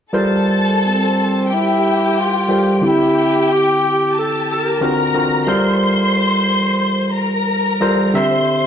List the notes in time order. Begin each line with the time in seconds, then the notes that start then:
0.12 G3 F4 A4 A#4 C5 A5
0.86 C4
1.49 G4 G5
1.53 E4
2.19 F4
2.48 G3 F4 A4 A#4 C5
2.78 D3 C4 F4
2.82 E4 G4 G5
3.52 G4
4.14 G4 A4 A5
4.51 A#4
4.81 D3 C4 F4 F#4 A#4 A#5
5.14 D3 C4 F4 F#4 A#4
5.47 G3 F4 A4 A#4 C5 C6
7.16 A#4 A#5
7.80 G3 F4 A4 A#4 C5
8.14 D3 C4 G4 C5 E5 C6